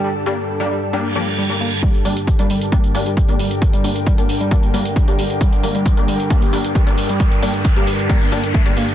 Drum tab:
HH |----------------|xxoxxxoxxxoxxxox|xxoxxxoxxxoxxxox|xxoxxxoxxxoxxxox|
BD |----------------|o---o---o---o---|o---o---o---o---|o---o---o---o---|

HH |xxoxxxoxxxoxxxox|
BD |o---o---o---o---|